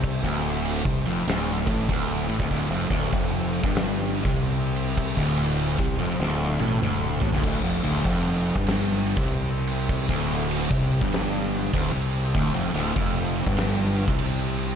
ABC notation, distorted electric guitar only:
X:1
M:4/4
L:1/16
Q:"Swing" 1/4=98
K:Dm
V:1 name="Distorted electric guitar" clef=bass
C, D,,4 C, F,,2 D,,2 A,,2 D,,2 A,, D,, | D,, F,, D,,2 F,,3 G,,4 C,4- C,- | C, D,,4 C, F,,2 D,,2 A,,2 D,,2 A,, D,, | D,, F,, D,,2 F,,3 G,,4 C,4- C,- |
C, D,,4 C,2 G,,4- G,, D,, C,3 | D,, F,, D,,2 F,,3 G,,4 C,4- C, |]